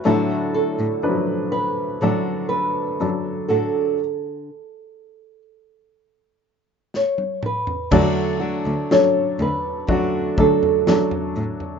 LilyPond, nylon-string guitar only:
\new Staff \with { instrumentName = "Nylon-string guitar" } { \time 4/4 \key d \lydian \tempo 4 = 61 fis'8 a'4 b'4 b'4 a'8~ | a'4. r4. cis''8 b'8 | d''4 cis''8 b'4 a'4 r8 | }